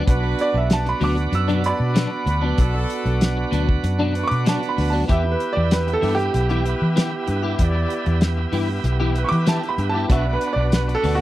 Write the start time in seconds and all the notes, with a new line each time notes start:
Already playing: F#3 B3 D4
0.06 B1 B3 D4 F#4 B4, kick, closed hi-hat
0.23 muted clean electric guitar stroke
0.39 D5, closed hi-hat
0.54 B1 E5, muted clean electric guitar stroke
0.70 A5, snare, closed hi-hat
0.85 B5, muted clean electric guitar stroke, closed hi-hat
1.00 D2 B2 F#3 B3 D4 D6, open hi-hat
1.17 muted clean electric guitar stroke, closed hi-hat
1.32 F#2 E6, muted clean electric guitar stroke, closed hi-hat
1.48 B2 F#3 B3 D4, closed hi-hat
1.63 D4 F#4 D5 B5, muted clean electric guitar stroke, closed hi-hat
1.80 B2
1.94 B2 F#3 B3 D4, snare, closed hi-hat
2.11 muted clean electric guitar stroke
2.26 D2 D4 F#4 B4, muted clean electric guitar stroke, closed hi-hat
2.41 F#3 B3 D4
2.57 B1 D4 F#4 A4, kick, closed hi-hat
2.74 muted clean electric guitar stroke
2.90 closed hi-hat
3.05 B1, muted clean electric guitar stroke, closed hi-hat
3.21 snare, closed hi-hat
3.36 muted clean electric guitar stroke
3.51 D2 B2 F#3 B3 D4, closed hi-hat
3.68 muted clean electric guitar stroke, kick
3.83 F#2, muted clean electric guitar stroke, closed hi-hat
3.99 B2 F#3 B3 D4
4.14 D4 F#4 B4, muted clean electric guitar stroke, closed hi-hat
4.24 C#6 D6
4.31 B2, closed hi-hat
4.45 B2 F#3 B3 D4 A5, snare, closed hi-hat
4.62 muted clean electric guitar stroke, closed hi-hat
4.69 B5
4.77 D2 D4 F#4 B4, muted clean electric guitar stroke, snare, open hi-hat
4.90 B3 D4 A5
4.94 F#3
5.08 E2 E3 B3 E4 G4 B4 E5, kick, closed hi-hat
5.24 muted clean electric guitar stroke
5.32 B4
5.40 closed hi-hat
5.53 D5, muted clean electric guitar stroke
5.57 E2
5.71 B4, snare, closed hi-hat
5.87 muted clean electric guitar stroke, closed hi-hat
5.93 A4
6.02 G2 E3 B3 E4 G4, open hi-hat
6.15 G4, muted clean electric guitar stroke
6.19 closed hi-hat
6.33 B1, muted clean electric guitar stroke, closed hi-hat
6.49 E3 B3 E4 G4, closed hi-hat
6.65 E4 G4 B4, muted clean electric guitar stroke, closed hi-hat
6.82 E3
6.95 E3 B3 E4 G4, snare, closed hi-hat
7.12 muted clean electric guitar stroke
7.27 G2 E4 G4 B4, muted clean electric guitar stroke, closed hi-hat
7.42 B3 E4 G4
7.59 E2 E4 G4 D5, kick, closed hi-hat
7.75 muted clean electric guitar stroke
7.90 closed hi-hat
8.06 E2, muted clean electric guitar stroke, closed hi-hat
8.21 snare, closed hi-hat
8.38 muted clean electric guitar stroke
8.52 G2 E3 B3 E4 G4, open hi-hat
8.69 muted clean electric guitar stroke
8.84 B1, muted clean electric guitar stroke, closed hi-hat
9.00 E3 B3 E4 G4
9.15 E4 G4 B4, muted clean electric guitar stroke, closed hi-hat
9.24 C#6
9.29 E3 D6, closed hi-hat
9.46 E3 B3 E4 G4 A5, snare, closed hi-hat
9.63 muted clean electric guitar stroke, closed hi-hat
9.69 B5
9.78 G2 E4 G4 B4, muted clean electric guitar stroke, closed hi-hat
9.89 A5
9.94 B3 E4 G4
10.08 B1 B2 B3 D4 F#4 B4 E5, kick, closed hi-hat
10.25 muted clean electric guitar stroke
10.33 B4
10.41 closed hi-hat
10.53 B1 D5
10.57 muted clean electric guitar stroke
10.72 B4, snare, closed hi-hat
10.88 muted clean electric guitar stroke, closed hi-hat
10.95 A4
11.03 D2 B2 B3 D4 F#4, open hi-hat
11.15 F#4